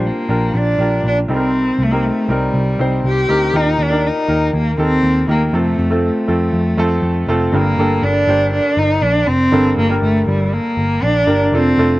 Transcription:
0.00 0.26 A#2 medium
0.00 0.25 F3 medium
0.00 0.29 D4 medium
0.00 0.29 F4 medium
0.00 0.29 G4 medium
0.00 0.30 A#4 medium
0.00 0.25 C5 medium
0.06 0.58 A#3 medium
0.29 0.50 A#1 medium
0.29 0.74 D4 medium
0.29 0.74 F4 medium
0.29 0.74 G4 medium
0.29 0.75 A#4 medium
0.54 0.74 A#1 medium
0.54 1.05 D4 medium
0.78 0.99 A#1 medium
0.78 1.24 D4 medium
0.78 1.24 F4 medium
0.78 1.24 G4 medium
0.78 1.25 A#4 medium
1.04 1.24 A#1 medium
1.04 1.18 D4 medium
1.28 1.70 C2 medium
1.28 2.00 C3 medium
1.28 2.00 G3 medium
1.28 1.85 C4 medium
1.28 1.84 C4 medium
1.28 1.85 D#4 medium
1.28 1.85 G4 medium
1.28 1.36 A4 medium
1.36 1.89 A#4 medium
1.79 2.09 C2 medium
1.83 2.09 A#3 medium
1.91 2.25 C4 medium
1.91 2.25 D#4 medium
1.91 2.26 G4 medium
1.91 2.26 A#4 medium
2.07 2.34 A3 medium
2.28 2.49 C2 medium
2.28 3.06 G3 medium
2.28 2.74 C4 medium
2.28 2.74 D#4 medium
2.28 2.74 G4 medium
2.28 2.75 A#4 medium
2.54 2.74 C2 medium
2.79 3.00 C2 medium
2.79 3.24 C4 medium
2.79 3.24 D#4 medium
2.79 3.25 G4 medium
2.79 3.25 C5 medium
3.04 3.24 C2 loud
3.04 3.58 G4 loud
3.29 3.50 D2 medium
3.29 3.51 C4 medium
3.29 3.51 D#4 medium
3.29 3.52 G4 medium
3.29 3.52 A#4 medium
3.53 3.74 D#2 medium
3.53 4.25 A#2 medium
3.53 3.87 A#3 medium
3.53 3.87 D#4 medium
3.53 3.84 D#4 medium
3.53 3.88 G4 medium
3.53 3.88 A#4 medium
3.79 4.09 D#2 medium
3.79 4.08 D4 medium
3.90 4.24 A#3 medium
3.90 4.24 D#4 medium
3.90 4.25 G4 medium
3.90 4.25 A#4 medium
4.07 4.55 D#4 medium
4.27 4.49 D#2 medium
4.27 4.73 A#3 medium
4.27 4.73 D#4 medium
4.27 4.74 G4 medium
4.27 4.74 A#4 medium
4.54 4.74 D#2 medium
4.54 4.78 A#3 medium
4.78 4.99 D#2 medium
4.78 5.23 A#3 medium
4.78 5.26 C4 loud
4.78 5.23 D#4 medium
4.78 5.24 G4 medium
4.78 5.24 A4 medium
5.03 5.24 D#2 loud
5.27 5.49 D#2 medium
5.27 5.50 A#3 medium
5.27 5.47 A#3 medium
5.27 5.51 D#4 medium
5.27 5.51 G4 medium
5.27 5.51 A#4 medium
5.47 5.57 A#3 medium
5.53 5.74 F2 medium
5.53 6.25 C3 medium
5.53 5.87 A3 medium
5.53 6.05 A3 medium
5.53 5.87 C4 medium
5.53 5.88 F4 medium
5.53 5.88 A4 medium
5.78 6.09 F2 medium
5.90 6.24 A3 medium
5.90 6.24 C4 medium
5.90 6.25 F4 medium
5.90 6.25 A4 medium
6.06 7.26 A3 medium
6.28 6.49 F2 medium
6.28 6.73 A3 medium
6.28 6.73 C4 medium
6.28 6.73 F4 medium
6.28 6.74 A4 medium
6.53 6.74 F2 medium
6.78 6.98 F2 medium
6.78 7.23 A3 medium
6.78 7.23 C4 medium
6.78 7.24 F4 medium
6.78 7.24 A4 medium
7.02 7.23 F2 loud
7.27 7.48 F1 medium
7.27 7.51 A3 medium
7.27 7.51 C4 medium
7.27 7.51 F4 medium
7.27 7.51 A4 medium
7.52 7.73 G1 loud
7.52 8.24 G2 medium
7.52 8.24 D3 medium
7.52 7.75 A#3 medium
7.52 8.05 A#3 medium
7.52 7.76 D4 medium
7.52 7.76 G4 medium
7.52 7.76 A#4 medium
7.77 7.98 G1 medium
7.77 8.23 A#3 medium
7.77 8.24 D4 medium
7.77 8.24 G4 medium
7.77 8.24 A4 medium
8.02 8.23 G1 medium
8.02 8.53 D4 loud
8.27 8.58 G1 loud
8.27 9.18 A#3 medium
8.27 9.18 D4 medium
8.27 9.18 G4 medium
8.27 9.19 C5 medium
8.53 8.80 D4 medium
8.77 8.98 G1 medium
8.77 9.04 D#4 medium
9.02 9.23 A#1 loud
9.02 9.29 D4 medium
9.27 9.48 F1 medium
9.27 9.78 C4 loud
9.52 9.73 G1 loud
9.52 10.24 G2 medium
9.52 10.24 D3 medium
9.52 9.86 A#3 medium
9.52 9.86 D4 medium
9.52 9.86 G4 medium
9.52 9.87 A4 medium
9.77 9.98 G1 medium
9.77 10.01 A#3 medium
9.89 10.80 A#3 medium
9.89 10.80 D4 medium
9.89 10.80 G4 medium
9.89 10.80 A#4 medium
10.02 10.23 G1 medium
10.02 10.26 A3 medium
10.27 10.58 G1 loud
10.27 10.55 G3 medium
10.53 11.05 A#3 medium
10.77 10.98 G1 medium
11.03 11.23 A#1 medium
11.03 11.40 D4 loud
11.27 11.48 G1 medium
11.27 11.50 A#3 medium
11.27 11.50 D4 medium
11.27 11.50 G4 medium
11.27 11.51 A#4 medium
11.52 11.73 F1 loud
11.52 12.00 F3 medium
11.52 11.75 A3 medium
11.52 12.00 C4 loud
11.52 11.76 D4 medium
11.52 11.76 F4 medium
11.52 11.76 A4 medium
11.78 11.98 F1 medium
11.78 12.00 A3 medium
11.78 12.00 D4 medium
11.78 12.00 F4 medium
11.78 12.00 A4 medium

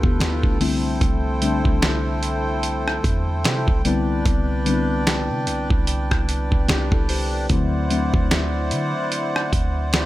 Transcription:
0.00 0.20 D2 loud
0.00 0.60 D3 medium
0.00 0.60 G3 medium
0.00 0.44 A3 medium
0.00 0.04 B3 medium
0.00 0.44 D4 medium
0.00 0.20 E4 medium
0.00 0.04 F4 medium
0.00 0.58 F4 medium
0.00 0.20 F4 medium
0.00 0.62 G4 medium
0.00 0.62 A4 medium
0.00 3.81 A4 medium
0.00 0.58 B4 medium
0.00 0.63 B4 medium
0.00 7.46 G5 medium
0.00 kick medium
0.04 0.20 B3 medium
0.20 0.43 D2 loud
0.20 0.43 B3 medium
0.20 0.43 E4 medium
0.20 snare loud
0.20 closed hi-hat medium
0.43 0.99 C2 loud
0.43 0.60 A3 medium
0.43 0.82 D4 medium
0.43 kick loud
0.60 1.35 D3 medium
0.60 1.35 G3 medium
0.60 1.36 A3 medium
0.60 1.36 C4 medium
0.60 3.82 E4 medium
0.60 1.36 E4 loud
0.60 3.81 C5 medium
0.60 open hi-hat medium
1.01 1.63 C2 loud
1.01 kick loud
1.01 closed hi-hat medium
1.41 2.91 D3 medium
1.41 2.92 G3 medium
1.41 2.92 A3 medium
1.41 2.92 C4 medium
1.41 2.92 D4 loud
1.41 closed hi-hat medium
1.65 3.00 C2 loud
1.65 kick medium
1.82 snare loud
1.82 closed hi-hat medium
2.23 closed hi-hat medium
2.63 closed hi-hat medium
2.88 cross-stick loud
3.04 3.46 E2 loud
3.04 kick loud
3.04 closed hi-hat medium
3.44 3.67 C3 loud
3.44 snare loud
3.44 closed hi-hat medium
3.68 4.23 C2 loud
3.68 kick loud
3.85 4.60 D3 medium
3.85 4.60 G3 medium
3.85 4.60 B3 medium
3.85 4.60 C4 medium
3.85 7.46 D4 medium
3.85 4.61 E4 loud
3.85 7.47 B4 medium
3.85 7.47 D5 medium
3.85 closed hi-hat medium
4.26 5.32 C2 loud
4.26 kick loud
4.26 closed hi-hat medium
4.65 6.15 D3 medium
4.65 6.16 G3 medium
4.65 6.16 B3 medium
4.65 6.16 C4 medium
4.65 4.74 D4 medium
4.65 closed hi-hat medium
4.74 6.20 E4 loud
5.07 snare loud
5.07 closed hi-hat medium
5.30 5.48 C3 loud
5.47 5.69 C2 loud
5.47 closed hi-hat medium
5.70 6.09 C2 loud
5.70 kick loud
5.87 closed hi-hat medium
6.11 6.50 C2 loud
6.11 kick medium
6.11 cross-stick loud
6.29 closed hi-hat medium
6.52 6.68 C2 loud
6.52 kick medium
6.68 6.91 C2 loud
6.68 6.92 D4 medium
6.68 6.91 G4 medium
6.68 snare loud
6.68 closed hi-hat medium
6.92 7.47 C2 loud
6.92 7.09 E4 medium
6.92 7.09 A4 medium
6.92 kick loud
7.09 7.32 G4 medium
7.09 7.32 C5 medium
7.09 open hi-hat medium
7.33 7.50 E4 medium
7.33 7.71 B4 medium
7.49 8.11 D2 loud
7.49 7.87 D3 medium
7.49 7.87 F#3 medium
7.49 7.87 A3 medium
7.49 7.88 C4 medium
7.49 10.06 E4 medium
7.49 7.88 E4 loud
7.49 10.06 C5 medium
7.49 10.06 D5 medium
7.49 10.06 F#5 medium
7.49 kick loud
7.49 closed hi-hat medium
7.90 9.40 D3 medium
7.90 9.40 F#3 medium
7.90 9.40 A3 medium
7.90 9.41 C4 medium
7.90 7.98 D4 medium
7.90 closed hi-hat medium
7.98 9.44 E4 medium
8.14 8.73 D2 loud
8.14 kick medium
8.31 snare loud
8.31 closed hi-hat medium
8.71 8.94 D3 loud
8.71 closed hi-hat medium
9.12 closed hi-hat medium
9.36 cross-stick loud
9.53 10.06 D2 loud
9.53 kick medium
9.53 closed hi-hat medium
9.93 snare loud
9.93 closed hi-hat medium

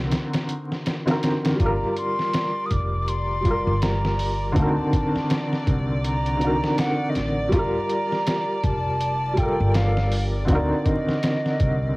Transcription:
0.00 0.12 C2 medium
0.00 0.43 D3 medium
0.00 0.44 C4 medium
0.00 0.45 D#4 medium
0.00 0.46 F#4 medium
0.00 0.48 A#4 loud
0.12 snare medium
0.12 closed hi-hat medium
0.33 snare medium
0.33 closed hi-hat medium
0.49 closed hi-hat medium
0.72 snare medium
0.86 snare loud
0.86 closed hi-hat medium
1.06 1.55 D3 medium
1.06 1.56 C4 medium
1.06 1.56 D#4 medium
1.06 1.57 F#4 medium
1.06 snare medium
1.06 closed hi-hat medium
1.11 1.58 A#4 loud
1.23 snare loud
1.23 closed hi-hat medium
1.45 snare loud
1.45 closed hi-hat medium
1.56 3.39 G3 medium
1.56 3.41 F4 medium
1.60 1.79 G1 medium
1.60 3.43 G4 medium
1.60 11.97 D5 medium
1.60 1.95 A#5 medium
1.60 kick loud
1.60 closed hi-hat medium
1.66 3.44 A#4 loud
1.97 2.67 C6 loud
1.97 closed hi-hat medium
2.19 snare soft
2.33 snare loud
2.33 closed hi-hat medium
2.66 2.73 D#6 medium
2.71 3.63 F1 medium
2.71 3.10 D6 loud
2.71 kick medium
2.71 closed hi-hat medium
3.08 3.84 C6 loud
3.08 closed hi-hat medium
3.41 4.50 G3 medium
3.41 4.52 F4 medium
3.45 4.54 G4 medium
3.45 kick medium
3.45 closed hi-hat medium
3.51 4.55 A#4 medium
3.67 4.53 G1 medium
3.82 4.58 A#5 medium
3.82 snare loud
3.82 closed hi-hat medium
4.05 snare medium
4.19 open hi-hat medium
4.52 4.75 D2 medium
4.52 6.36 D3 loud
4.52 6.37 C4 medium
4.52 kick loud
4.52 closed hi-hat medium
4.57 6.38 D#4 medium
4.57 6.39 F#4 medium
4.57 5.67 A5 medium
4.62 6.41 A#4 loud
4.93 kick medium
4.93 closed hi-hat medium
5.16 snare soft
5.30 snare loud
5.30 closed hi-hat medium
5.53 snare soft
5.67 6.59 C2 medium
5.67 kick medium
5.67 closed hi-hat medium
6.04 6.81 A#5 loud
6.04 closed hi-hat medium
6.26 closed hi-hat soft
6.37 7.47 D3 medium
6.37 7.48 C4 medium
6.41 7.49 D#4 medium
6.41 7.50 F#4 medium
6.41 closed hi-hat medium
6.47 7.52 A#4 medium
6.64 snare medium
6.78 7.11 F#5 loud
6.78 snare loud
6.78 closed hi-hat medium
7.10 7.18 D#5 medium
7.15 7.49 A1 medium
7.15 7.55 D5 medium
7.15 snare soft
7.15 closed hi-hat medium
7.49 7.72 G1 medium
7.49 9.32 G3 medium
7.49 9.34 F4 medium
7.49 kick loud
7.49 closed hi-hat medium
7.53 9.35 G4 medium
7.53 8.66 A#5 loud
7.59 9.37 A#4 loud
7.89 closed hi-hat medium
8.12 snare soft
8.27 snare loud
8.27 closed hi-hat medium
8.63 9.55 F1 medium
8.63 9.40 A5 loud
8.63 kick medium
8.63 closed hi-hat medium
9.00 closed hi-hat medium
9.33 10.43 G3 medium
9.33 10.45 F4 medium
9.33 closed hi-hat medium
9.37 10.46 A4 medium
9.37 9.77 G5 medium
9.37 kick medium
9.43 10.48 A#4 medium
9.60 10.46 G1 loud
9.74 10.24 F5 medium
9.74 snare loud
9.74 closed hi-hat medium
9.97 snare soft
10.12 open hi-hat medium
10.45 11.97 D3 medium
10.45 11.97 C4 medium
10.45 kick loud
10.45 closed hi-hat medium
10.49 10.68 D2 medium
10.49 11.97 D#4 medium
10.49 11.97 F#4 medium
10.49 10.88 D5 medium
10.55 11.97 A#4 loud
10.86 11.97 D#5 medium
10.86 kick medium
10.86 closed hi-hat medium
11.09 snare medium
11.23 snare loud
11.23 closed hi-hat medium
11.46 snare soft
11.60 11.97 C2 medium
11.60 kick medium
11.60 closed hi-hat medium

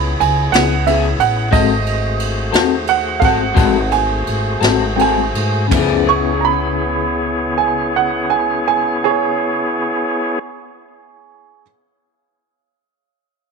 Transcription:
0.00 0.17 C#2 loud
0.00 1.49 B3 medium
0.00 1.49 E4 medium
0.00 1.49 G#4 medium
0.00 1.50 C#5 medium
0.00 0.20 B5 medium
0.20 0.50 C#2 medium
0.20 0.52 G#5 loud
0.20 ride medium
0.52 1.15 C#2 loud
0.52 0.75 B3 soft
0.52 0.74 E4 medium
0.52 0.74 G#4 medium
0.52 0.85 F#5 loud
0.52 snare loud
0.52 ride loud
0.86 1.06 C#3 medium
0.86 1.06 B3 medium
0.86 1.07 E4 medium
0.86 1.07 G#4 medium
0.86 1.19 E5 medium
0.86 ride medium
1.18 1.49 A1 loud
1.18 1.52 F#5 loud
1.18 ride medium
1.51 2.49 G#1 loud
1.51 1.72 G#3 medium
1.51 5.67 A3 medium
1.51 1.72 C4 medium
1.51 1.73 F#4 medium
1.51 5.67 F#4 medium
1.51 5.67 G#4 medium
1.51 1.73 A4 medium
1.51 5.67 C5 medium
1.51 2.18 D#5 loud
1.51 kick loud
1.51 ride medium
1.86 ride medium
2.20 ride medium
2.52 3.18 D#2 loud
2.52 2.74 C4 medium
2.52 2.74 F#4 medium
2.52 2.73 A4 medium
2.52 snare loud
2.52 ride medium
2.87 3.21 F#5 loud
2.87 ride medium
3.20 3.53 G#1 medium
3.20 3.43 C4 medium
3.20 3.42 F#4 soft
3.20 3.42 A4 medium
3.20 3.23 F5 medium
3.20 kick medium
3.20 ride medium
3.25 3.91 F#5 loud
3.54 4.23 G#1 loud
3.54 3.76 G#3 medium
3.54 3.76 C4 medium
3.54 3.77 F#4 medium
3.54 3.77 A4 medium
3.54 kick loud
3.54 ride medium
3.58 snare soft
3.92 4.95 G#5 medium
3.92 ride medium
4.27 4.60 G#1 medium
4.27 ride medium
4.61 5.30 G#1 loud
4.61 4.84 C4 soft
4.61 4.84 F#4 medium
4.61 4.83 A4 medium
4.61 snare loud
4.61 ride medium
4.96 5.19 G#3 medium
4.96 5.19 C4 medium
4.96 5.20 F#4 medium
4.96 5.20 A4 medium
4.96 5.00 G5 medium
4.96 ride medium
5.01 5.71 G#5 loud
5.34 5.68 G#2 loud
5.34 ride medium
5.68 10.04 C#3 medium
5.68 10.07 B3 medium
5.68 kick loud
5.68 floor tom loud
5.68 crash medium
5.72 10.04 C#2 loud
5.72 6.09 F3 medium
5.72 6.10 A3 medium
5.72 6.06 B3 medium
5.72 10.10 E4 medium
5.72 6.09 D5 medium
5.76 10.12 G#4 medium
6.07 10.39 B3 medium
6.07 10.39 E4 medium
6.07 10.39 G#4 medium
6.07 10.39 C#5 medium
6.07 6.44 C#6 loud
6.41 6.45 A#5 medium
6.45 7.53 B5 medium
7.58 7.93 G#5 medium
7.96 8.31 F#5 medium
8.30 8.66 G#5 medium
8.68 9.04 G#5 loud
9.04 11.61 G#4 medium
9.04 11.62 C#5 medium

